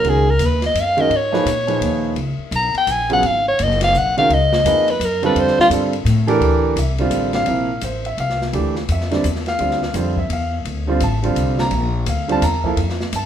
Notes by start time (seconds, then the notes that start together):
Already playing: A#4
0.04 C#2 D#3 G#3 C#4 F#4 A#4, ride
0.10 G#4
0.30 A#4
0.39 D#2, hi-hat pedal, ride
0.46 B4
0.62 D#5, snare, ride
0.75 F#2, hi-hat pedal, ride
0.80 F5
0.97 D#3 G#3 C#4 F#4 A#4 D#5, ride
1.10 G#2, ride
1.16 C#5
1.32 F3 A#3 D#4 G#4 B4, snare
1.46 A#2, hi-hat pedal, ride
1.67 A#2 F3 D#4 G#4 B4, ride
1.81 D#2, ride
2.16 C#2, ride
2.38 muted upright bass stroke
2.51 B1, hi-hat pedal, ride
2.56 A#5
2.74 G5, muted upright bass stroke, ride
2.87 A#1, hi-hat pedal, ride
2.91 G#5
3.10 C#3 F#3 B3 F4 G#4 F#5, ride
3.23 G#1 F5, ride
3.48 C#5
3.59 F#1, hi-hat pedal, ride
3.63 D#5
3.71 snare
3.81 F5, snare, ride
3.94 B1 F#5, hi-hat pedal
4.17 D#3 G#3 C#4 F#4 A#4 F5, ride
4.30 C#2, ride
4.34 D#5
4.53 snare
4.64 F2 F3 A#3 D#4 G#4 B4, hi-hat pedal, ride
4.88 B4, ride
5.00 F#2, hi-hat pedal, ride
5.05 A#4
5.23 D3 G3 C4 F4 A4 B4, ride
5.35 F2, ride
5.40 C5
5.47 snare
5.58 F4, muted upright bass stroke, snare
5.70 G2 D3 G3 C4 F4 A4, hi-hat pedal, ride
5.93 ride
6.05 A2, hi-hat pedal, ride
6.27 E3 D4 G4 A4 A#4, ride
6.40 D2, ride
6.76 C2 E5, hi-hat pedal, ride
6.98 D3 G3 C4 F4, ride
7.11 A1, hi-hat pedal, ride
7.33 F5, snare, ride
7.46 A#1 C3 F3 A#3 E4, ride
7.81 A1 C5, hi-hat pedal, ride
8.05 E5, ride
8.18 C2 F5, ride
8.30 snare
8.42 snare
8.53 D2 E3 A3 D4 G4, ride
8.76 snare
8.88 F2 E5, hi-hat pedal, ride
9.01 snare
9.11 D3 G3 C4 D4, snare, ride
9.24 E2, hi-hat pedal, ride
9.35 snare
9.46 F5, snare, ride
9.58 D2 D3 G3 C4 F4, ride
9.71 snare
9.83 snare
9.94 F2 D3 G3 C4 F4 C5, hi-hat pedal, ride
10.17 E5, kick
10.30 E2 F5, ride
10.65 D2, ride
10.87 D3 G3 C4 F4
11.00 A1 A5, hi-hat pedal, ride
11.23 D3 G3 C4 F4, ride
11.36 C2, hi-hat pedal, ride
11.58 A#5, snare
11.71 A#1, ride
12.06 D2 F5, hi-hat pedal, ride
12.28 D3 G3 C4 F4 A5, ride
12.42 E2 A#5, hi-hat pedal, ride
12.64 F3 A#3 E4 A4, kick
12.76 F2, ride
12.90 snare
13.01 snare
13.13 G2 A5, hi-hat pedal, ride